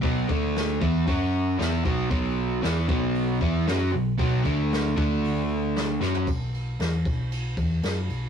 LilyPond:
<<
  \new Staff \with { instrumentName = "Overdriven electric guitar" } { \time 4/4 \key b \minor \tempo 4 = 116 <b, fis b>8 <d a d'>4 <e b e'>8 <fis cis' fis'>4 <e b e'>8 <b, fis b>8 | <b, fis b>4 <e b e'>8 <b, fis b>4 <e b e'>8 <fis cis' fis'>8 <b, fis>8 | <b, fis b>8 <d a d'>4 <d a d'>2 <fis cis' fis'>8 | r1 | }
  \new Staff \with { instrumentName = "Picked electric bass" } { \clef bass \time 4/4 \key b \minor b,,8 d,4 e,8 fis,4 e,8 b,,8 | b,,4 e,8 b,,4 e,8 fis,8 b,,8 | b,,8 d,4 d,2 fis,8 | b,,4 e,8 b,,4 e,8 fis,8 b,,8 | }
  \new DrumStaff \with { instrumentName = "Drums" } \drummode { \time 4/4 <hho bd>8 bd8 <hho sn>8 bd8 <hho bd>4 <hho sn>8 bd8 | <hho bd>4 <hho sn>8 bd8 hho8 bd8 <hho sn>4 | <hho bd>8 bd8 <hho sn>8 bd8 hho4 <hho sn>8 sn16 tomfh16 | <bd cymr>8 cymr8 <cymr sn>8 <bd cymr>8 cymr8 <bd cymr>8 <cymr sn>8 cymr8 | }
>>